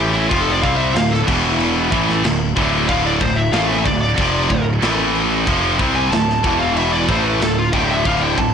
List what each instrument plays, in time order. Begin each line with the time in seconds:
Already playing: picked electric bass A1, distorted electric guitar A2 E3 A3, lead electric guitar G4
0.14 lead electric guitar E4
0.28 picked electric bass F1, distorted electric guitar F2 C3 F3, lead electric guitar F4, kick, crash
0.41 lead electric guitar A4
0.52 lead electric guitar D5
0.62 picked electric bass C2, distorted electric guitar C3 G3 C4, lead electric guitar F5, kick, crash
0.77 lead electric guitar E5
0.95 picked electric bass D1, distorted electric guitar D2 A2, lead electric guitar F5, snare, crash
1.11 lead electric guitar A4, snare
1.27 picked electric bass E1, distorted electric guitar E2 B2 E3, kick, crash
1.60 crash
1.92 picked electric bass A1, distorted electric guitar A2 E3 A3, kick, crash
2.09 snare
2.24 picked electric bass D1, distorted electric guitar D2 A2, snare, crash
2.56 picked electric bass D1, distorted electric guitar D2 A2 D3, kick, crash
2.89 picked electric bass D1, distorted electric guitar D2 A2 D3, lead electric guitar F5, kick, crash
3.06 lead electric guitar D5
3.21 picked electric bass D1, distorted electric guitar D2 A2, lead electric guitar C5, kick, crash
3.36 lead electric guitar E5
3.53 picked electric bass A1, distorted electric guitar A2 E3 A3, lead electric guitar F5, snare, crash
3.68 lead electric guitar E5
3.85 picked electric bass D1, distorted electric guitar D2 A2, lead electric guitar D5, kick, crash
4.02 lead electric guitar D5
4.18 picked electric bass F1, distorted electric guitar F2 C3 F3, kick, crash
4.50 picked electric bass D1, distorted electric guitar D2 A2, kick, crash
4.82 picked electric bass A1, distorted electric guitar A2 E3 A3, snare, crash
5.15 crash
5.47 picked electric bass F1, distorted electric guitar F2 C3 F3, kick, crash
5.79 picked electric bass C2, distorted electric guitar C3 G3 C4, kick, crash
5.95 lead electric guitar G#5
6.11 picked electric bass D1, distorted electric guitar D2 A2, lead electric guitar A5, snare, crash
6.30 snare
6.43 picked electric bass E1, distorted electric guitar E2 B2 E3, kick, crash
6.59 lead electric guitar F5
6.76 lead electric guitar E5, crash
6.92 lead electric guitar D5
7.08 picked electric bass A1, distorted electric guitar A2 E3 A3, lead electric guitar C5, kick, crash
7.25 lead electric guitar B4
7.41 picked electric bass D1, distorted electric guitar D2 A2, lead electric guitar A4, snare, crash
7.58 lead electric guitar F4
7.73 picked electric bass D1, distorted electric guitar D2 A2 D3, lead electric guitar G5, kick, crash
7.91 lead electric guitar E5
8.05 picked electric bass D1, distorted electric guitar D2 A2 D3, lead electric guitar F5, kick, crash
8.21 lead electric guitar G5
8.38 picked electric bass D1, distorted electric guitar D2 A2, lead electric guitar A5, kick, crash